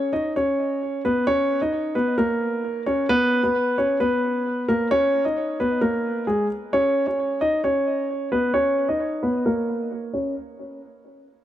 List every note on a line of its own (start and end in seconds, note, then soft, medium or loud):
0.00 0.12 C#4 medium
0.00 0.12 C#5 medium
0.13 0.32 D#4 medium
0.13 0.32 D#5 medium
0.36 1.01 C#4 medium
0.36 1.00 C#5 medium
1.05 1.24 B3 medium
1.05 1.23 B4 medium
1.27 1.60 C#4 medium
1.27 1.59 C#5 loud
1.62 1.94 D#4 medium
1.62 1.94 D#5 medium
1.95 2.15 B3 medium
1.95 2.14 B4 medium
2.18 2.83 A#3 medium
2.18 2.82 A#4 medium
2.86 3.06 C#4 medium
2.86 3.05 C#5 medium
3.09 3.42 B3 medium
3.09 3.41 B4 loud
3.44 3.76 B3 medium
3.44 3.75 B4 medium
3.78 3.97 C#4 medium
3.78 3.96 C#5 medium
4.00 4.65 B3 medium
4.00 4.64 B4 medium
4.68 4.88 A#3 medium
4.68 4.87 A#4 medium
4.91 5.23 C#4 medium
4.91 5.23 C#5 loud
5.25 5.57 D#4 medium
5.25 5.57 D#5 medium
5.60 5.79 B3 medium
5.60 5.78 B4 medium
5.81 6.25 A#3 medium
5.81 6.24 A#4 medium
6.27 6.46 G#3 medium
6.27 6.46 G#4 medium
6.73 7.05 C#4 medium
6.73 7.05 C#5 loud
7.07 7.39 C#4 medium
7.07 7.39 C#5 medium
7.41 7.60 D#4 medium
7.41 7.60 D#5 medium
7.64 8.28 C#4 medium
7.64 8.28 C#5 medium
8.32 8.51 B3 medium
8.32 8.51 B4 medium
8.54 8.87 C#4 medium
8.54 8.86 C#5 loud
8.89 9.21 D#4 medium
8.89 9.21 D#5 medium
9.23 9.42 B3 medium
9.23 9.41 B4 medium
9.46 10.10 A#3 medium
9.46 10.10 A#4 medium
10.13 10.33 C#4 medium
10.13 10.32 C#5 medium